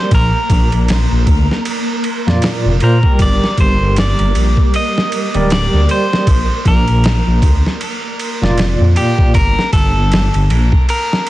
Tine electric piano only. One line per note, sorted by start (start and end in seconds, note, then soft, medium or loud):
0.00 0.10 D5 medium
2.26 2.77 A#2 medium
2.26 2.77 A#3 medium
2.26 2.77 F4 medium
2.26 2.78 D5 medium
2.82 2.98 A#2 medium
2.82 2.98 A#3 medium
2.82 2.99 F4 medium
2.82 2.99 C5 medium
3.04 5.29 G3 medium
3.04 5.29 G4 medium
3.04 5.30 A#4 medium
5.34 6.25 G3 medium
5.34 6.25 G4 medium
5.34 6.26 A#4 medium
5.34 6.26 D5 medium
8.41 9.33 A#2 medium
8.41 9.33 A#3 medium
8.41 9.33 F4 medium
8.41 9.34 D5 medium